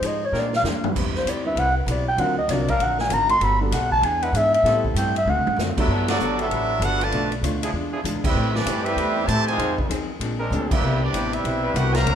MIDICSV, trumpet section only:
0, 0, Header, 1, 2, 480
1, 0, Start_track
1, 0, Key_signature, 1, "major"
1, 0, Tempo, 308642
1, 1481, Time_signature, 4, 2, 24, 8
1, 18896, End_track
2, 0, Start_track
2, 0, Title_t, "Trumpet section"
2, 0, Program_c, 0, 61
2, 9000, Note_on_c, 0, 71, 79
2, 9003, Note_on_c, 0, 76, 92
2, 9005, Note_on_c, 0, 62, 87
2, 9008, Note_on_c, 0, 69, 80
2, 9435, Note_off_c, 0, 71, 0
2, 9436, Note_off_c, 0, 76, 0
2, 9437, Note_off_c, 0, 62, 0
2, 9439, Note_off_c, 0, 69, 0
2, 9461, Note_on_c, 0, 59, 78
2, 9464, Note_on_c, 0, 74, 92
2, 9470, Note_on_c, 0, 66, 83
2, 9474, Note_on_c, 0, 69, 80
2, 9904, Note_off_c, 0, 59, 0
2, 9906, Note_off_c, 0, 74, 0
2, 9909, Note_off_c, 0, 66, 0
2, 9911, Note_off_c, 0, 69, 0
2, 9970, Note_on_c, 0, 62, 91
2, 9976, Note_on_c, 0, 76, 104
2, 9980, Note_on_c, 0, 71, 80
2, 9985, Note_on_c, 0, 69, 83
2, 10615, Note_off_c, 0, 62, 0
2, 10615, Note_off_c, 0, 69, 0
2, 10618, Note_off_c, 0, 76, 0
2, 10620, Note_off_c, 0, 71, 0
2, 10633, Note_on_c, 0, 69, 90
2, 10643, Note_on_c, 0, 62, 94
2, 10645, Note_on_c, 0, 78, 114
2, 10652, Note_on_c, 0, 71, 94
2, 10911, Note_off_c, 0, 71, 0
2, 10913, Note_off_c, 0, 69, 0
2, 10918, Note_off_c, 0, 62, 0
2, 10919, Note_off_c, 0, 78, 0
2, 10930, Note_on_c, 0, 71, 86
2, 10936, Note_on_c, 0, 74, 93
2, 10937, Note_on_c, 0, 65, 89
2, 10944, Note_on_c, 0, 81, 98
2, 11392, Note_off_c, 0, 71, 0
2, 11395, Note_off_c, 0, 74, 0
2, 11396, Note_off_c, 0, 65, 0
2, 11399, Note_off_c, 0, 81, 0
2, 12842, Note_on_c, 0, 76, 105
2, 12843, Note_on_c, 0, 67, 78
2, 12846, Note_on_c, 0, 71, 83
2, 12850, Note_on_c, 0, 60, 88
2, 13276, Note_off_c, 0, 67, 0
2, 13276, Note_off_c, 0, 76, 0
2, 13278, Note_off_c, 0, 71, 0
2, 13280, Note_off_c, 0, 60, 0
2, 13303, Note_on_c, 0, 60, 87
2, 13311, Note_on_c, 0, 67, 90
2, 13311, Note_on_c, 0, 74, 102
2, 13319, Note_on_c, 0, 71, 82
2, 13741, Note_off_c, 0, 71, 0
2, 13748, Note_off_c, 0, 67, 0
2, 13750, Note_off_c, 0, 60, 0
2, 13760, Note_on_c, 0, 71, 89
2, 13766, Note_on_c, 0, 76, 96
2, 13767, Note_on_c, 0, 67, 88
2, 13769, Note_on_c, 0, 60, 90
2, 13783, Note_off_c, 0, 74, 0
2, 14408, Note_off_c, 0, 67, 0
2, 14422, Note_off_c, 0, 76, 0
2, 14427, Note_on_c, 0, 67, 104
2, 14429, Note_on_c, 0, 81, 113
2, 14430, Note_off_c, 0, 71, 0
2, 14430, Note_on_c, 0, 72, 98
2, 14434, Note_off_c, 0, 60, 0
2, 14440, Note_on_c, 0, 76, 112
2, 14717, Note_off_c, 0, 72, 0
2, 14730, Note_off_c, 0, 67, 0
2, 14731, Note_off_c, 0, 81, 0
2, 14736, Note_on_c, 0, 72, 93
2, 14737, Note_off_c, 0, 76, 0
2, 14739, Note_on_c, 0, 80, 105
2, 14741, Note_on_c, 0, 65, 89
2, 14748, Note_on_c, 0, 75, 94
2, 15182, Note_off_c, 0, 72, 0
2, 15184, Note_off_c, 0, 80, 0
2, 15185, Note_off_c, 0, 65, 0
2, 15189, Note_off_c, 0, 75, 0
2, 16683, Note_on_c, 0, 60, 79
2, 16685, Note_on_c, 0, 76, 88
2, 16688, Note_on_c, 0, 71, 84
2, 16690, Note_on_c, 0, 67, 77
2, 17117, Note_off_c, 0, 60, 0
2, 17118, Note_off_c, 0, 76, 0
2, 17119, Note_off_c, 0, 71, 0
2, 17120, Note_off_c, 0, 67, 0
2, 17171, Note_on_c, 0, 71, 81
2, 17174, Note_on_c, 0, 74, 96
2, 17176, Note_on_c, 0, 67, 75
2, 17181, Note_on_c, 0, 60, 72
2, 17605, Note_off_c, 0, 60, 0
2, 17609, Note_off_c, 0, 67, 0
2, 17622, Note_off_c, 0, 71, 0
2, 17624, Note_on_c, 0, 60, 79
2, 17628, Note_on_c, 0, 67, 80
2, 17635, Note_off_c, 0, 74, 0
2, 17638, Note_on_c, 0, 76, 95
2, 17640, Note_on_c, 0, 71, 80
2, 18277, Note_off_c, 0, 67, 0
2, 18282, Note_off_c, 0, 60, 0
2, 18289, Note_off_c, 0, 76, 0
2, 18290, Note_off_c, 0, 71, 0
2, 18296, Note_on_c, 0, 67, 95
2, 18303, Note_on_c, 0, 78, 98
2, 18305, Note_on_c, 0, 62, 88
2, 18308, Note_on_c, 0, 71, 90
2, 18585, Note_off_c, 0, 67, 0
2, 18589, Note_off_c, 0, 62, 0
2, 18589, Note_off_c, 0, 78, 0
2, 18589, Note_on_c, 0, 82, 108
2, 18591, Note_off_c, 0, 71, 0
2, 18597, Note_on_c, 0, 77, 91
2, 18601, Note_on_c, 0, 66, 93
2, 18602, Note_on_c, 0, 72, 86
2, 18896, Note_off_c, 0, 66, 0
2, 18896, Note_off_c, 0, 72, 0
2, 18896, Note_off_c, 0, 77, 0
2, 18896, Note_off_c, 0, 82, 0
2, 18896, End_track
0, 0, End_of_file